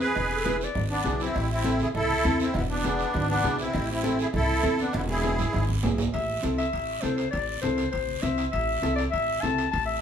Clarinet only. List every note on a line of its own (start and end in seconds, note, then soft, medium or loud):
0.31 0.38 G#4 medium
0.36 0.46 A4 medium
0.45 0.65 B4 medium
0.64 0.82 D5 medium
6.13 6.41 E5 medium
6.58 7.03 E5 medium
7.01 7.16 C5 medium
7.16 7.30 C5 medium
7.31 7.60 D5 medium
7.62 7.90 C5 medium
7.91 8.23 C5 medium
8.22 8.45 E5 medium
8.51 8.94 E5 loud
8.96 9.03 D5 medium
9.11 9.43 E5 loud
9.41 9.71 A5 loud
9.71 9.85 A5 loud
9.86 10.01 E5 medium